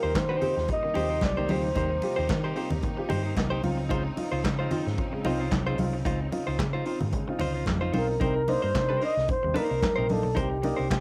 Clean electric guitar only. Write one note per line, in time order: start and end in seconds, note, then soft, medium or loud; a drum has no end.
0.03 0.13 D#4 soft
0.03 0.14 G4 medium
0.03 0.15 C5 medium
0.29 0.40 D#4 medium
0.29 0.41 G4 medium
0.29 0.42 C5 medium
0.41 0.58 D#4 medium
0.41 0.56 G4 medium
0.41 0.56 C5 medium
0.57 muted clean electric guitar stroke soft
0.68 muted clean electric guitar stroke soft
0.83 muted clean electric guitar stroke soft
0.94 1.11 D#4 medium
0.94 1.10 G4 medium
0.94 1.09 C5 medium
1.10 1.21 D#4 medium
1.10 1.22 G4 medium
1.10 1.22 C5 medium
1.22 muted clean electric guitar stroke soft
1.37 1.48 D#4 soft
1.37 1.49 G4 medium
1.37 1.49 C5 medium
1.49 1.70 D#4 medium
1.49 1.64 G4 medium
1.49 1.62 C5 medium
1.64 muted clean electric guitar stroke medium
1.75 1.96 D#4 medium
1.75 1.90 G4 medium
1.75 1.89 C5 medium
1.90 muted clean electric guitar stroke soft
2.02 muted clean electric guitar stroke soft
2.16 2.27 D#4 medium
2.16 2.28 G4 medium
2.16 2.29 C5 medium
2.44 2.55 D#4 medium
2.44 2.56 G4 medium
2.44 2.56 C5 medium
2.56 2.73 D#4 medium
2.56 2.71 G4 medium
2.56 2.69 C5 medium
2.71 muted clean electric guitar stroke soft
2.82 muted clean electric guitar stroke soft
2.97 muted clean electric guitar stroke soft
3.09 3.24 D#4 medium
3.09 3.23 G4 medium
3.09 3.22 C5 medium
3.23 3.35 D#4 medium
3.23 3.35 G4 medium
3.23 3.36 C5 medium
3.36 muted clean electric guitar stroke soft
3.50 3.61 D#4 medium
3.50 3.63 G4 medium
3.50 3.63 C5 loud
3.77 muted clean electric guitar stroke soft
3.89 4.11 D#4 medium
3.89 4.05 F4 medium
3.89 4.04 C5 medium
4.05 muted clean electric guitar stroke medium
4.17 muted clean electric guitar stroke soft
4.32 4.42 D#4 soft
4.32 4.43 F4 medium
4.32 4.44 C5 medium
4.44 muted clean electric guitar stroke soft
4.59 4.69 D#4 medium
4.59 4.70 F4 medium
4.59 4.71 C5 medium
4.71 4.88 D#4 medium
4.71 4.86 F4 medium
4.71 4.85 C5 medium
4.86 muted clean electric guitar stroke soft
4.98 muted clean electric guitar stroke soft
5.13 muted clean electric guitar stroke soft
5.25 5.40 D#4 medium
5.25 5.40 F4 medium
5.25 5.39 C5 medium
5.40 5.50 D#4 medium
5.40 5.51 F4 medium
5.40 5.52 C5 medium
5.51 muted clean electric guitar stroke soft
5.67 5.77 D#4 medium
5.67 5.78 F4 medium
5.67 5.79 C5 loud
5.93 muted clean electric guitar stroke soft
6.05 6.26 D#4 medium
6.05 6.21 F4 medium
6.05 6.19 C5 medium
6.21 muted clean electric guitar stroke soft
6.32 muted clean electric guitar stroke soft
6.47 6.57 D#4 medium
6.47 6.58 F4 medium
6.47 6.59 C5 medium
6.58 muted clean electric guitar stroke soft
6.73 6.84 D#4 medium
6.73 6.85 F4 medium
6.73 6.86 C5 medium
6.85 7.03 D#4 medium
6.85 7.00 F4 medium
6.85 6.99 C5 medium
7.00 muted clean electric guitar stroke soft
7.12 muted clean electric guitar stroke soft
7.28 muted clean electric guitar stroke soft
7.39 7.55 D#4 medium
7.39 7.54 F4 medium
7.39 7.53 C5 loud
7.54 7.64 D#4 medium
7.54 7.65 F4 medium
7.54 7.66 C5 medium
7.66 muted clean electric guitar stroke soft
7.81 7.91 D#4 medium
7.81 7.92 F4 medium
7.81 7.93 C5 medium
7.93 8.14 D#4 medium
7.93 8.09 F4 medium
7.93 8.07 C5 loud
8.08 muted clean electric guitar stroke soft
8.20 8.42 D#4 medium
8.20 8.35 A#4 medium
8.20 8.34 C5 loud
8.36 muted clean electric guitar stroke soft
8.48 muted clean electric guitar stroke soft
8.62 8.73 D#4 soft
8.62 8.74 A#4 medium
8.62 8.74 C5 medium
8.74 muted clean electric guitar stroke soft
8.89 8.99 D#4 medium
8.89 9.01 A#4 medium
8.89 9.01 C5 medium
9.01 9.18 D#4 medium
9.01 9.16 A#4 medium
9.01 9.15 C5 medium
9.16 muted clean electric guitar stroke soft
9.28 muted clean electric guitar stroke soft
9.43 muted clean electric guitar stroke soft
9.54 9.70 D#4 loud
9.54 9.69 A#4 medium
9.54 9.68 C5 loud
9.69 9.80 D#4 medium
9.69 9.81 A#4 medium
9.69 9.81 C5 medium
9.81 muted clean electric guitar stroke soft
9.96 10.06 D#4 medium
9.96 10.07 A#4 medium
9.96 10.08 C5 loud
10.08 muted clean electric guitar stroke soft
10.23 muted clean electric guitar stroke medium
10.35 10.57 D#4 medium
10.35 10.50 A#4 medium
10.35 10.49 C5 medium
10.50 muted clean electric guitar stroke medium
10.62 muted clean electric guitar stroke soft
10.77 10.87 D#4 medium
10.77 10.88 A#4 medium
10.77 10.89 C5 medium
10.89 muted clean electric guitar stroke soft